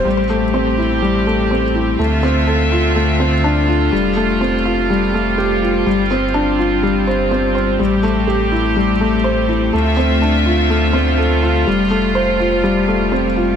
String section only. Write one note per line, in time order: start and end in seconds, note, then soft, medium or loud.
0.04 1.97 A3 medium
0.04 1.97 C4 medium
0.04 1.97 G4 medium
1.99 3.91 D3 medium
1.99 5.83 A3 medium
1.99 3.91 C4 medium
1.99 7.76 F4 medium
1.99 3.91 E5 medium
3.93 7.76 G3 medium
5.85 11.62 C4 medium
7.80 13.56 A3 medium
7.80 9.71 G4 medium
9.72 11.65 D3 medium
9.72 13.56 F4 medium
9.72 11.65 E5 medium
11.67 13.56 G3 medium